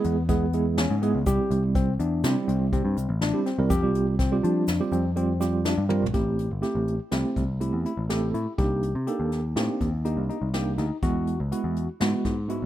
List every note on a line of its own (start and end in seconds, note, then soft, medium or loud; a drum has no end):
0.00 0.16 G#3 medium
0.00 0.16 B3 medium
0.00 0.16 E4 medium
0.00 0.16 G#4 medium
0.04 0.86 E2 medium
0.04 0.22 B3 medium
0.04 closed hi-hat medium
0.29 0.44 G#3 medium
0.29 0.44 B3 medium
0.29 0.65 B3 medium
0.29 0.44 E4 medium
0.29 0.45 G#4 medium
0.29 kick medium
0.29 closed hi-hat medium
0.53 0.85 G#3 medium
0.53 0.85 B3 medium
0.53 0.85 E4 medium
0.53 0.85 G#4 medium
0.53 closed hi-hat medium
0.78 0.95 C#4 medium
0.78 snare loud
0.78 closed hi-hat medium
0.90 1.13 G#2 medium
1.02 1.18 G#3 medium
1.02 1.20 B3 medium
1.02 1.18 B3 medium
1.02 1.18 E4 medium
1.02 1.18 G#4 loud
1.02 closed hi-hat medium
1.15 1.26 C#2 medium
1.26 1.38 C2 medium
1.26 1.88 G3 medium
1.26 1.88 C4 medium
1.26 1.89 E4 medium
1.26 1.89 G4 medium
1.26 1.62 G4 medium
1.26 kick loud
1.26 closed hi-hat medium
1.26 shaker medium
1.51 1.96 C2 medium
1.51 closed hi-hat medium
1.75 1.93 C4 medium
1.75 kick loud
1.75 closed hi-hat medium
1.99 2.22 E2 medium
1.99 2.35 D4 medium
1.99 closed hi-hat medium
1.99 shaker soft
2.24 2.35 C3 medium
2.24 2.86 G3 medium
2.24 2.86 C4 medium
2.24 2.87 E4 medium
2.24 2.87 G4 medium
2.24 snare loud
2.24 closed hi-hat medium
2.24 shaker medium
2.48 2.71 C2 medium
2.48 2.66 C4 medium
2.48 closed hi-hat medium
2.73 2.84 C3 medium
2.73 3.09 C4 medium
2.73 kick medium
2.73 closed hi-hat medium
2.85 2.96 G2 medium
2.97 3.08 C2 medium
2.97 closed hi-hat medium
2.97 shaker soft
3.09 3.32 A1 medium
3.21 3.39 D4 medium
3.21 snare loud
3.21 closed hi-hat medium
3.33 3.49 G3 medium
3.33 3.49 C4 medium
3.33 3.49 E4 medium
3.33 3.49 G4 medium
3.46 3.64 C4 medium
3.46 snare soft
3.46 closed hi-hat medium
3.58 3.70 C2 medium
3.58 3.70 G3 medium
3.58 3.71 C4 medium
3.58 3.71 E4 medium
3.58 3.71 A#4 medium
3.70 3.82 F2 medium
3.70 4.06 G4 medium
3.70 kick medium
3.70 closed hi-hat medium
3.70 shaker medium
3.83 4.39 C2 medium
3.83 4.14 G3 medium
3.83 4.14 C4 medium
3.83 4.14 F4 medium
3.83 4.14 G4 medium
3.95 closed hi-hat medium
4.19 4.37 C4 medium
4.19 kick medium
4.19 snare soft
4.19 closed hi-hat medium
4.32 4.63 G3 medium
4.32 4.63 C4 medium
4.32 4.63 F4 medium
4.32 4.63 G4 medium
4.43 4.66 F3 medium
4.43 4.79 D4 medium
4.43 closed hi-hat medium
4.68 4.79 F2 medium
4.68 snare loud
4.68 closed hi-hat medium
4.68 shaker medium
4.80 5.03 G3 medium
4.80 5.03 C4 medium
4.80 5.03 F4 medium
4.80 5.04 G4 medium
4.92 5.73 F2 medium
4.92 5.10 C4 medium
4.92 closed hi-hat medium
4.92 shaker soft
5.16 5.32 G3 medium
5.16 5.32 C4 medium
5.16 5.52 C4 medium
5.16 5.32 F4 medium
5.16 5.32 G4 medium
5.16 closed hi-hat medium
5.40 5.72 G3 medium
5.40 5.72 C4 medium
5.40 5.72 F4 medium
5.40 5.72 G4 medium
5.40 snare soft
5.40 closed hi-hat medium
5.40 shaker medium
5.65 5.83 D4 medium
5.65 snare loud
5.65 closed hi-hat medium
5.65 shaker soft
5.78 6.00 G2 medium
5.89 6.05 G3 medium
5.89 6.05 C4 medium
5.89 6.08 C4 medium
5.89 6.05 F4 medium
5.89 6.05 A#4 medium
5.89 high tom soft
6.02 6.14 A#1 medium
6.02 floor tom medium
6.13 6.49 A1 medium
6.13 6.45 A3 medium
6.13 6.45 C4 medium
6.13 6.45 E4 medium
6.13 6.45 G4 medium
6.13 6.50 G4 medium
6.13 kick medium
6.13 closed hi-hat medium
6.39 closed hi-hat medium
6.51 6.62 G1 medium
6.62 6.93 A3 medium
6.62 6.93 C4 medium
6.62 6.93 E4 medium
6.62 6.94 G4 medium
6.62 6.99 G4 medium
6.62 snare soft
6.62 closed hi-hat medium
6.75 6.98 A1 medium
6.88 closed hi-hat soft
7.11 7.23 C2 medium
7.11 7.43 A3 medium
7.11 7.43 C4 medium
7.11 7.48 C4 medium
7.11 7.43 E4 medium
7.11 7.43 G4 medium
7.11 snare medium
7.11 closed hi-hat medium
7.36 7.71 C2 medium
7.36 kick medium
7.36 closed hi-hat medium
7.60 7.92 A3 medium
7.60 7.92 C4 medium
7.60 7.92 E4 medium
7.60 7.79 E4 medium
7.60 7.92 G4 medium
7.60 closed hi-hat medium
7.73 7.84 E2 medium
7.85 8.03 E4 medium
7.85 closed hi-hat soft
7.97 8.32 A1 medium
8.09 8.41 A3 medium
8.09 8.41 C4 medium
8.09 8.41 E4 medium
8.09 8.28 G4 medium
8.09 8.41 A4 medium
8.09 snare medium
8.09 closed hi-hat medium
8.34 8.46 A2 medium
8.34 8.52 E4 medium
8.34 closed hi-hat medium
8.58 8.93 C2 medium
8.58 8.89 A#3 medium
8.58 8.89 D4 medium
8.58 8.90 D#4 medium
8.58 8.94 G4 medium
8.58 8.90 G4 medium
8.58 kick medium
8.58 closed hi-hat medium
8.83 closed hi-hat medium
8.95 9.07 C3 medium
9.07 9.39 A#3 medium
9.07 9.39 D4 medium
9.07 9.39 D#4 medium
9.07 9.43 G4 medium
9.07 9.39 A4 medium
9.07 closed hi-hat medium
9.20 9.54 D#2 medium
9.32 snare soft
9.32 closed hi-hat medium
9.56 9.68 A2 medium
9.56 9.87 A#3 medium
9.56 9.92 C4 medium
9.56 9.87 D4 medium
9.56 9.88 D#4 medium
9.56 9.87 G4 medium
9.56 snare medium
9.56 closed hi-hat medium
9.81 10.15 D#2 medium
9.81 kick medium
9.81 closed hi-hat medium
10.05 10.36 A#3 medium
10.05 10.36 D4 medium
10.05 10.23 D#4 medium
10.05 10.37 D#4 medium
10.05 10.36 G4 medium
10.05 closed hi-hat medium
10.17 10.29 C2 medium
10.29 10.47 D#4 medium
10.29 closed hi-hat soft
10.42 10.76 C2 medium
10.54 10.85 A#3 medium
10.54 10.85 D4 medium
10.54 10.85 D#4 medium
10.54 10.72 G4 medium
10.54 10.85 G4 medium
10.54 snare medium
10.54 closed hi-hat medium
10.78 10.90 D2 medium
10.78 10.96 D#4 medium
10.78 snare soft
10.78 closed hi-hat soft
11.02 11.37 E2 medium
11.02 11.34 G#3 medium
11.02 11.34 B3 medium
11.02 11.34 E4 medium
11.02 11.39 F#4 medium
11.02 11.34 F#4 medium
11.02 kick medium
11.02 closed hi-hat medium
11.27 closed hi-hat medium
11.40 11.51 C#2 medium
11.52 11.83 G#3 medium
11.52 11.83 B3 medium
11.52 11.83 E4 medium
11.52 11.88 F#4 medium
11.52 11.83 F#4 medium
11.52 closed hi-hat medium
11.64 11.87 E2 medium
11.76 closed hi-hat medium
12.00 12.13 G#2 medium
12.00 12.32 G#3 medium
12.00 12.32 B3 medium
12.00 12.37 B3 medium
12.00 12.32 E4 medium
12.00 12.32 F#4 medium
12.00 snare loud
12.00 closed hi-hat medium
12.25 12.59 G#2 medium
12.25 kick medium
12.25 snare soft
12.25 closed hi-hat medium
12.49 12.66 G#3 medium
12.49 12.66 B3 medium
12.49 12.66 E4 medium
12.49 12.66 F#4 medium
12.49 closed hi-hat medium
12.62 12.66 B1 medium